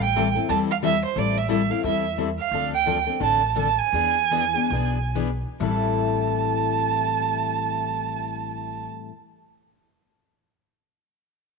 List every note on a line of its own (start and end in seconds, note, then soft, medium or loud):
0.00 0.36 A1 medium
0.00 0.34 G5 medium
0.16 0.27 E3 medium
0.16 0.27 G3 medium
0.16 0.27 C4 medium
0.16 0.27 E4 medium
0.16 0.27 A4 loud
0.35 0.48 C4 soft
0.35 0.48 E4 soft
0.35 0.48 A4 medium
0.48 1.03 E2 medium
0.48 0.69 E3 medium
0.48 0.69 G3 medium
0.48 0.69 C4 medium
0.48 0.70 E4 medium
0.48 0.69 A4 medium
0.48 0.58 A5 medium
0.71 0.77 F5 medium
0.82 0.94 E3 medium
0.82 0.93 G3 medium
0.82 0.94 C4 medium
0.82 0.94 E4 loud
0.82 0.94 A4 medium
0.82 1.02 E5 loud
1.05 1.20 C5 medium
1.16 1.70 A1 medium
1.16 1.36 E3 medium
1.16 1.37 G3 medium
1.16 1.37 C4 medium
1.16 1.37 E4 medium
1.16 1.37 A4 medium
1.16 1.39 D5 medium
1.38 1.50 E5 medium
1.48 1.60 E3 medium
1.48 1.60 G3 medium
1.48 1.61 C4 loud
1.48 1.61 E4 loud
1.48 1.61 A4 loud
1.48 1.72 E5 medium
1.70 1.84 C4 soft
1.70 1.84 E4 medium
1.70 1.83 A4 medium
1.70 1.84 F5 medium
1.84 2.38 E2 medium
1.84 2.04 E3 medium
1.84 2.04 G3 medium
1.84 2.05 C4 medium
1.84 2.05 E4 medium
1.84 2.05 A4 medium
1.84 2.16 E5 medium
2.18 2.28 E3 medium
2.18 2.29 G3 medium
2.18 2.29 C4 medium
2.18 2.29 E4 medium
2.18 2.29 A4 medium
2.39 2.70 F5 medium
2.51 3.06 D2 medium
2.51 2.73 D3 medium
2.51 2.73 F3 medium
2.51 2.73 C4 medium
2.51 2.73 D4 medium
2.51 2.73 A4 medium
2.74 3.05 G5 medium
2.86 2.96 D3 medium
2.86 2.97 F3 medium
2.86 2.97 C4 medium
2.86 2.97 D4 loud
2.86 2.97 A4 medium
3.07 3.19 C4 soft
3.07 3.19 D4 medium
3.07 3.19 A4 medium
3.20 3.78 A1 medium
3.20 3.41 D3 medium
3.20 3.41 F3 medium
3.20 3.41 C4 medium
3.20 3.41 D4 medium
3.20 3.41 A4 medium
3.20 3.54 A5 loud
3.55 3.67 D3 medium
3.55 3.67 F3 medium
3.55 3.67 C4 medium
3.55 3.67 D4 medium
3.55 3.67 A4 medium
3.55 3.80 A5 loud
3.78 5.14 G#5 loud
3.93 4.55 E2 medium
3.93 4.15 E3 medium
3.93 4.16 B3 medium
3.93 4.16 D4 medium
3.93 4.16 G#4 medium
4.31 4.43 E3 medium
4.31 4.43 B3 medium
4.31 4.44 D4 medium
4.31 4.43 G#4 loud
4.54 4.71 B3 soft
4.54 4.71 D4 soft
4.54 4.70 G#4 medium
4.70 5.42 B1 medium
4.70 4.97 E3 medium
4.70 4.97 B3 medium
4.70 4.97 D4 medium
4.70 4.97 G#4 medium
5.15 5.29 E3 medium
5.15 5.29 B3 medium
5.15 5.29 D4 medium
5.15 5.29 G#4 medium
5.60 8.86 A1 medium
5.60 9.10 A2 medium
5.60 9.11 E3 medium
5.60 9.11 G3 medium
5.60 9.11 C4 medium
5.60 9.12 E4 medium
5.60 9.12 A4 medium
5.60 8.88 A5 medium